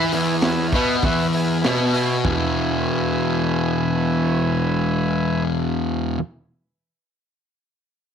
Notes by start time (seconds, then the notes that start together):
Already playing: E3 E4
0.12 E2 E3 B4 E5 G#5, open hi-hat
0.42 B4 E5, snare, open hi-hat
0.46 G#5
0.72 B2 B3 B4 E5 F#5, kick, open hi-hat
1.02 E2 E3 B4 E5 F#5, kick, open hi-hat
1.33 B4 E5 G#5, open hi-hat
1.62 B2 B3 B4 E5 G#5, snare, open hi-hat
1.94 B4 E5 G#5, open hi-hat
2.25 E2 B2 E3 B4 E5 G#5, kick, floor tom